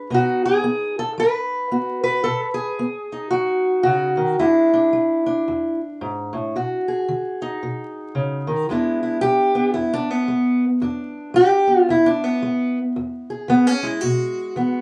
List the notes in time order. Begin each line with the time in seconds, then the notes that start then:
Already playing: B4
0.10 B2 B3 D#4
0.14 F#4
0.46 G#4
0.64 B3
0.99 A4
1.18 F#3 B4
1.71 B3 F#4
2.04 B4
2.24 B2 A4
2.54 G#4
2.79 B3
3.12 D#4
3.31 F#3 F#4
3.83 C#3 F#4
4.17 D#3
4.39 E2 G#3 D4 E4
4.74 D4
4.93 G#3
5.26 D4
5.48 E2
6.01 G#2
6.33 A2
6.56 B2 F#4
6.88 G#4
7.08 D#3
7.42 D#4
7.63 B2
8.15 C#3
8.47 D#3
8.69 E2 G#3 B3 D4 E4
9.03 E4
9.21 G#3 G4
9.55 B3
9.74 E2 E4
9.94 D4
10.10 B3
10.28 G#3
10.81 E2 D4
11.34 G#3 G4
11.67 B3
11.89 E2 E4
12.06 D4
12.24 B3
12.42 G#3
12.96 E2
13.30 G#4
13.48 E3 B3
13.67 C#4
13.83 G#3 E4
14.01 B2 F#4
14.56 E3 B3